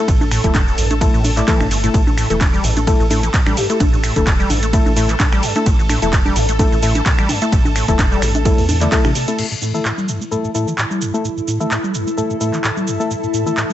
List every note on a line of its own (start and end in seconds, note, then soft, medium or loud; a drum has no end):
0.00 1.93 A4 medium
0.08 0.39 A1 loud
0.08 0.12 A2 medium
0.08 kick loud
0.08 closed hi-hat soft
0.08 ride medium
0.08 shaker soft
0.21 0.24 A2 medium
0.21 high conga medium
0.21 shaker soft
0.31 0.42 A2 loud
0.31 finger snap medium
0.31 open hi-hat loud
0.31 shaker medium
0.44 0.73 E1 medium
0.44 0.50 E3 medium
0.44 0.55 A3 loud
0.44 0.55 E4 medium
0.44 0.55 A4 loud
0.44 kick medium
0.44 closed hi-hat medium
0.44 shaker soft
0.55 0.62 A2 medium
0.55 kick loud
0.55 clap loud
0.55 closed hi-hat medium
0.55 ride medium
0.55 high conga medium
0.55 shaker soft
0.67 0.79 A1 medium
0.67 shaker soft
0.78 1.08 A1 loud
0.78 0.88 G2 medium
0.78 open hi-hat loud
0.78 shaker medium
0.91 0.94 A3 medium
0.91 closed hi-hat medium
0.91 high conga medium
0.91 shaker soft
1.01 1.05 A2 medium
1.01 1.20 A3 loud
1.01 1.20 E4 medium
1.01 1.20 A4 loud
1.01 kick loud
1.01 closed hi-hat medium
1.01 ride medium
1.01 shaker soft
1.14 1.43 A1 medium
1.14 1.26 A2 medium
1.14 shaker soft
1.24 1.31 A#2 medium
1.24 open hi-hat loud
1.24 high conga medium
1.24 shaker medium
1.37 1.41 A2 medium
1.37 1.46 A3 medium
1.37 1.46 E4 medium
1.37 1.46 D5 medium
1.37 clap soft
1.37 closed hi-hat medium
1.37 shaker soft
1.48 1.62 E3 loud
1.48 1.67 A3 medium
1.48 1.67 E4 medium
1.48 1.67 A4 loud
1.48 kick loud
1.48 clap loud
1.48 closed hi-hat medium
1.48 ride medium
1.48 shaker soft
1.60 1.90 G1 medium
1.60 1.69 A2 loud
1.60 finger snap medium
1.60 high conga medium
1.60 shaker soft
1.71 1.78 A3 medium
1.71 open hi-hat loud
1.71 shaker medium
1.84 1.89 A2 loud
1.84 2.02 A3 medium
1.84 2.02 E4 medium
1.84 2.02 A4 medium
1.84 closed hi-hat medium
1.84 shaker soft
1.94 2.25 A1 loud
1.94 1.98 A2 medium
1.94 9.39 A4 medium
1.94 kick loud
1.94 closed hi-hat medium
1.94 ride medium
1.94 shaker soft
2.07 2.10 A2 medium
2.07 high conga medium
2.07 shaker soft
2.17 2.28 A2 loud
2.17 finger snap medium
2.17 open hi-hat loud
2.17 shaker medium
2.30 2.59 E1 medium
2.30 2.36 E3 medium
2.30 2.41 A3 loud
2.30 2.41 E4 medium
2.30 2.41 A4 loud
2.30 closed hi-hat medium
2.30 shaker soft
2.41 2.48 A2 medium
2.41 kick loud
2.41 clap loud
2.41 closed hi-hat medium
2.41 ride medium
2.41 high conga medium
2.41 shaker soft
2.53 2.65 G3 loud
2.53 shaker soft
2.64 2.94 A1 medium
2.64 2.74 G2 medium
2.64 open hi-hat loud
2.64 shaker medium
2.77 2.80 A3 medium
2.77 closed hi-hat medium
2.77 high conga medium
2.77 shaker soft
2.87 2.91 A2 medium
2.87 3.06 A3 loud
2.87 3.06 E4 medium
2.87 3.06 A4 loud
2.87 kick loud
2.87 closed hi-hat soft
2.87 ride medium
2.87 shaker soft
3.00 3.29 A1 loud
3.00 3.03 A2 medium
3.00 shaker soft
3.10 3.21 A2 loud
3.10 3.23 A3 medium
3.10 3.23 E4 medium
3.10 3.23 A4 loud
3.10 open hi-hat loud
3.10 high conga medium
3.10 shaker medium
3.23 3.29 E3 medium
3.23 closed hi-hat medium
3.23 shaker soft
3.34 3.41 A2 medium
3.34 kick loud
3.34 clap loud
3.34 closed hi-hat medium
3.34 ride medium
3.34 shaker soft
3.46 3.54 A1 medium
3.46 3.58 G3 loud
3.46 finger snap medium
3.46 high conga medium
3.46 shaker soft
3.57 3.67 G2 medium
3.57 3.65 G4 medium
3.57 open hi-hat loud
3.57 shaker medium
3.70 3.73 A3 medium
3.70 3.80 A3 loud
3.70 3.80 E4 medium
3.70 3.76 G4 medium
3.70 3.80 A4 loud
3.70 closed hi-hat medium
3.70 shaker soft
3.80 4.11 A1 loud
3.80 3.84 A2 medium
3.80 3.88 D4 medium
3.80 kick loud
3.80 closed hi-hat medium
3.80 ride medium
3.80 high conga medium
3.80 shaker soft
3.93 3.96 A2 medium
3.93 4.00 D4 medium
3.93 shaker soft
4.03 4.14 A2 loud
4.03 finger snap medium
4.03 open hi-hat loud
4.03 shaker medium
4.16 4.46 E1 medium
4.16 4.22 E3 medium
4.16 4.27 A3 loud
4.16 4.27 E4 medium
4.16 4.27 A4 loud
4.16 kick medium
4.16 closed hi-hat medium
4.16 high conga medium
4.16 shaker soft
4.27 4.34 A2 medium
4.27 kick loud
4.27 clap loud
4.27 closed hi-hat medium
4.27 ride medium
4.27 shaker soft
4.39 4.51 G3 loud
4.39 shaker soft
4.50 4.81 A1 loud
4.50 4.60 G2 medium
4.50 open hi-hat loud
4.50 high conga medium
4.50 shaker medium
4.63 4.66 A3 medium
4.63 closed hi-hat medium
4.63 shaker soft
4.73 4.77 A2 medium
4.73 4.92 A3 loud
4.73 4.92 E4 medium
4.73 4.92 A4 loud
4.73 kick loud
4.73 closed hi-hat medium
4.73 ride medium
4.73 shaker soft
4.86 5.15 A1 loud
4.86 4.89 A2 medium
4.86 high conga medium
4.86 shaker soft
4.96 5.07 A2 loud
4.96 5.09 A3 medium
4.96 5.09 E4 medium
4.96 5.09 A4 loud
4.96 open hi-hat loud
4.96 shaker medium
5.09 5.15 E3 medium
5.09 clap soft
5.09 closed hi-hat medium
5.09 shaker soft
5.20 5.27 A2 medium
5.20 kick loud
5.20 clap loud
5.20 closed hi-hat medium
5.20 ride medium
5.20 high conga medium
5.20 shaker soft
5.32 5.40 A1 medium
5.32 5.44 G3 loud
5.32 finger snap medium
5.32 shaker soft
5.43 5.53 G2 medium
5.43 open hi-hat loud
5.43 shaker medium
5.56 5.66 A3 loud
5.56 5.59 A3 medium
5.56 5.66 E4 medium
5.56 5.66 A4 loud
5.56 closed hi-hat medium
5.56 high conga medium
5.56 shaker soft
5.66 5.97 A1 loud
5.66 5.71 A2 medium
5.66 kick loud
5.66 closed hi-hat medium
5.66 ride medium
5.66 shaker soft
5.79 5.82 A2 medium
5.79 shaker soft
5.89 6.00 A2 loud
5.89 finger snap medium
5.89 open hi-hat loud
5.89 high conga medium
5.89 shaker medium
6.02 6.32 E1 medium
6.02 6.08 E3 medium
6.02 6.13 A3 loud
6.02 6.13 E4 medium
6.02 6.13 A4 loud
6.02 closed hi-hat medium
6.02 shaker soft
6.13 6.20 A2 medium
6.13 kick loud
6.13 clap loud
6.13 closed hi-hat medium
6.13 ride medium
6.13 shaker soft
6.25 6.38 G3 loud
6.25 high conga medium
6.25 shaker soft
6.36 6.67 A1 loud
6.36 6.47 G2 medium
6.36 open hi-hat loud
6.36 shaker medium
6.49 6.52 A3 medium
6.49 closed hi-hat medium
6.49 shaker soft
6.59 6.64 A2 medium
6.59 6.78 A3 loud
6.59 6.78 E4 medium
6.59 6.78 A4 loud
6.59 kick loud
6.59 closed hi-hat medium
6.59 ride medium
6.59 high conga medium
6.59 shaker soft
6.72 7.01 A1 loud
6.72 6.75 A2 medium
6.72 shaker soft
6.83 6.93 A2 loud
6.83 6.95 A3 medium
6.83 6.95 E4 medium
6.83 6.95 A4 loud
6.83 open hi-hat loud
6.83 shaker medium
6.95 7.01 E3 medium
6.95 closed hi-hat medium
6.95 high conga medium
6.95 shaker soft
7.06 7.13 A2 medium
7.06 kick loud
7.06 clap loud
7.06 closed hi-hat medium
7.06 ride medium
7.06 shaker soft
7.19 7.26 A1 medium
7.19 7.31 G3 loud
7.19 finger snap medium
7.19 shaker soft
7.29 7.40 G2 medium
7.29 open hi-hat loud
7.29 high conga medium
7.29 shaker medium
7.42 7.52 A3 loud
7.42 7.45 A3 medium
7.42 7.52 E4 medium
7.42 7.52 A4 loud
7.42 closed hi-hat medium
7.42 shaker soft
7.52 7.83 A1 loud
7.52 7.56 A2 medium
7.52 kick loud
7.52 closed hi-hat medium
7.52 ride medium
7.52 shaker soft
7.65 7.69 A2 medium
7.65 high conga medium
7.65 shaker soft
7.76 7.86 A2 loud
7.76 finger snap medium
7.76 open hi-hat loud
7.76 shaker medium
7.88 8.18 E1 medium
7.88 7.94 E3 medium
7.88 7.99 A3 loud
7.88 7.99 E4 medium
7.88 7.99 A4 loud
7.88 kick medium
7.88 closed hi-hat medium
7.88 shaker soft
7.99 8.06 A2 medium
7.99 kick loud
7.99 clap loud
7.99 closed hi-hat medium
7.99 ride medium
7.99 high conga medium
7.99 shaker soft
8.12 8.24 G3 loud
8.12 shaker soft
8.22 8.53 A1 loud
8.22 8.33 G2 medium
8.22 finger snap medium
8.22 open hi-hat loud
8.22 shaker medium
8.35 8.38 A3 medium
8.35 closed hi-hat medium
8.35 high conga medium
8.35 shaker soft
8.45 8.50 A2 medium
8.45 8.64 A3 loud
8.45 8.64 E4 medium
8.45 8.64 A4 loud
8.45 kick loud
8.45 closed hi-hat medium
8.45 ride medium
8.45 shaker soft
8.58 8.87 E2 loud
8.58 8.62 A2 medium
8.58 open hi-hat medium
8.58 shaker soft
8.69 8.76 A2 medium
8.69 open hi-hat loud
8.69 high conga medium
8.69 shaker medium
8.81 8.87 D3 medium
8.81 8.90 A3 medium
8.81 8.90 E4 medium
8.81 8.90 D5 medium
8.81 clap soft
8.81 closed hi-hat medium
8.81 shaker soft
8.92 8.96 G2 loud
8.92 9.11 A3 medium
8.92 9.11 E4 medium
8.92 9.11 A4 loud
8.92 kick loud
8.92 clap loud
8.92 closed hi-hat medium
8.92 ride medium
8.92 shaker soft
9.05 9.12 A1 loud
9.05 9.13 C3 loud
9.05 finger snap medium
9.05 high conga medium
9.05 shaker soft
9.15 9.26 C3 medium
9.15 open hi-hat loud
9.15 shaker medium
9.28 9.46 A3 medium
9.28 9.34 C4 medium
9.28 9.46 E4 medium
9.28 9.46 A4 medium
9.28 closed hi-hat medium
9.28 shaker soft
9.38 9.43 A2 medium
9.38 13.73 E4 medium
9.38 crash medium
9.38 shaker soft
9.51 9.55 A2 medium
9.51 shaker soft
9.62 9.72 A2 medium
9.62 shaker medium
9.74 9.80 E3 medium
9.74 9.85 A3 medium
9.74 9.85 E4 medium
9.74 9.85 A4 loud
9.74 shaker soft
9.85 9.92 A2 medium
9.85 clap loud
9.85 shaker soft
9.98 10.10 G3 medium
9.98 shaker soft
10.08 10.19 G2 medium
10.08 shaker medium
10.17 10.24 A3 medium
10.17 13.73 A4 medium
10.21 shaker soft
10.31 10.36 A2 medium
10.31 10.50 A3 medium
10.31 10.50 E4 medium
10.31 10.50 A4 loud
10.31 shaker soft
10.44 10.48 A2 medium
10.44 shaker soft
10.55 10.65 A2 loud
10.55 10.67 A3 medium
10.55 10.67 E4 medium
10.55 10.67 A4 medium
10.55 shaker medium
10.67 10.73 E3 medium
10.67 shaker soft
10.78 10.85 A2 medium
10.78 clap loud
10.78 shaker soft
10.91 11.03 G3 loud
10.91 shaker soft
10.96 13.73 A5 medium
11.01 11.12 G2 medium
11.01 shaker medium
11.14 11.17 A3 medium
11.14 11.24 A3 medium
11.14 11.24 E4 medium
11.14 11.24 A4 loud
11.14 shaker soft
11.24 11.29 A2 medium
11.24 shaker soft
11.37 11.41 A2 medium
11.37 shaker soft
11.48 11.58 A2 medium
11.48 shaker medium
11.60 11.66 E3 medium
11.60 11.71 A3 medium
11.60 11.71 E4 medium
11.60 11.71 A4 loud
11.60 shaker soft
11.71 11.78 A2 medium
11.71 clap loud
11.71 shaker soft
11.84 11.96 G3 loud
11.84 shaker soft
11.94 12.05 G2 medium
11.94 shaker medium
12.07 12.10 A3 medium
12.07 shaker soft
12.17 12.22 A2 medium
12.17 12.36 A3 medium
12.17 12.36 E4 medium
12.17 12.36 A4 loud
12.17 shaker soft
12.30 12.34 A2 medium
12.30 shaker soft
12.41 12.51 A2 loud
12.41 12.53 A3 medium
12.41 12.53 E4 medium
12.41 12.53 A4 loud
12.41 shaker medium
12.53 12.59 E3 medium
12.53 clap soft
12.53 shaker soft
12.64 12.71 A2 medium
12.64 clap loud
12.64 shaker soft
12.77 12.89 G3 loud
12.77 shaker soft
12.87 12.98 G2 medium
12.87 shaker medium
13.00 13.10 A3 medium
13.00 13.03 A3 medium
13.00 13.10 E4 medium
13.00 13.10 A4 loud
13.00 shaker soft
13.11 13.15 A2 medium
13.11 shaker soft
13.23 13.27 A2 medium
13.23 shaker soft
13.34 13.44 A2 loud
13.34 shaker medium
13.46 13.52 E3 medium
13.46 13.57 A3 medium
13.46 13.57 E4 medium
13.46 13.57 A4 loud
13.46 shaker soft
13.57 13.64 A2 medium
13.57 clap loud
13.57 shaker soft
13.70 13.73 G3 loud
13.70 shaker soft